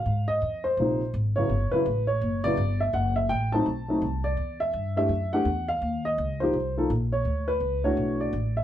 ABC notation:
X:1
M:4/4
L:1/8
Q:"Swing" 1/4=167
K:Edor
V:1 name="Upright piano"
=f ^d2 ^B3 z c- | c B2 c2 d2 e | f e g a4 d- | d e2 e2 f2 =f- |
=f _e2 =c3 z _d- | _d B2 c2 =d2 e |]
V:2 name="Upright piano"
z4 [^B,,^E,^A,^D] z2 [C,F,=B,=E] | z [C,F,B,E] z3 [C,F,B,E] z2 | z3 [F,A,=C_E] z [F,A,C^D] z2 | z3 [E,A,DG] z [E,A,DG] z2 |
z3 [=F,_B,_EG] z [F,B,EA] z2 | z3 [E,A,DF]3 z2 |]
V:3 name="Upright bass" clef=bass
^G,,2 ^E,,2 ^A,,,2 ^G,,,2 | G,,, z A,,,2 F,,,2 G,,,2 | F,,,2 A,,,2 B,,,2 =C,,2 | E,,2 G,,2 F,,2 E,,2 |
_E,,2 _D,,2 =C,,2 _B,,,2 | D,,2 C,,2 B,,,2 A,,,2 |]